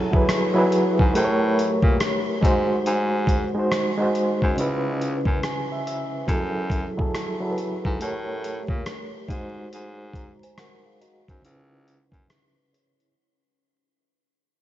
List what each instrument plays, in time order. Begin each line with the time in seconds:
Already playing: reed electric piano F#3 E4 G#4 A4 C#5
0.12 reed electric piano F#3 E4 G#4, kick
0.16 reed electric piano B4
0.29 cross-stick, closed hi-hat
0.54 reed electric piano F#3 E4 G#4
0.58 reed electric piano B4
0.72 closed hi-hat
0.99 baritone saxophone G#2, kick
1.14 baritone saxophone A2, reed electric piano A3 G4 A#4, closed hi-hat
1.18 reed electric piano C5
1.24 reed electric piano C#5
1.59 closed hi-hat
1.83 baritone saxophone A#2, kick
2.00 cross-stick, closed hi-hat
2.41 baritone saxophone G#2, reed electric piano G#3 D#4 F#4, kick, closed hi-hat
2.46 reed electric piano C5
2.86 baritone saxophone G#2, closed hi-hat
3.27 kick, closed hi-hat
3.55 reed electric piano G#3 D#4 F#4
3.59 reed electric piano C5
3.72 cross-stick, closed hi-hat
3.98 reed electric piano G#3 D#4 F#4
4.02 reed electric piano C5
4.15 closed hi-hat
4.42 baritone saxophone F#2, kick
4.56 baritone saxophone C#2, reed electric piano C#3 C#4 E4, closed hi-hat
4.61 reed electric piano B4
5.01 closed hi-hat
5.25 baritone saxophone F#2, kick
5.43 reed electric piano G#5, cross-stick, closed hi-hat
5.72 reed electric piano E5
5.87 reed electric piano E5, closed hi-hat
6.27 baritone saxophone F#2, reed electric piano F#3 E4 G#4, kick, closed hi-hat
6.31 reed electric piano A4
6.70 kick, closed hi-hat
6.97 reed electric piano F#3 E4 G#4, kick
7.01 reed electric piano A4
7.15 cross-stick, closed hi-hat
7.41 reed electric piano F#3 E4 G#4
7.45 reed electric piano A4
7.51 reed electric piano B4
7.58 closed hi-hat
7.85 baritone saxophone G#2, kick
8.00 baritone saxophone A2, reed electric piano A3 G4 A#4 C#5, closed hi-hat
8.44 closed hi-hat
8.68 baritone saxophone A#2, kick
8.86 cross-stick, closed hi-hat
9.28 baritone saxophone G#2, reed electric piano G#3 D#4 F#4, kick, closed hi-hat
9.33 reed electric piano C5
9.73 baritone saxophone G#2, closed hi-hat
10.13 reed electric piano A#5, kick, closed hi-hat
10.43 reed electric piano C5 G#5, closed hi-hat
10.58 reed electric piano A#4 F#5, cross-stick, closed hi-hat
10.85 reed electric piano G#4 F5
11.01 reed electric piano F#4 D#5 A#5, closed hi-hat
11.28 baritone saxophone F#2, reed electric piano D#4 C5, kick, closed hi-hat
11.41 baritone saxophone C#2, reed electric piano C#3 C#4 E4 G#5, closed hi-hat
11.46 reed electric piano B4
11.87 reed electric piano F#5, closed hi-hat
12.12 baritone saxophone F#2, reed electric piano E5, kick, closed hi-hat
12.29 reed electric piano E5, cross-stick, closed hi-hat
12.56 reed electric piano B4
12.73 reed electric piano G#4 C#5 E5, closed hi-hat
13.00 reed electric piano E4 C#5, closed hi-hat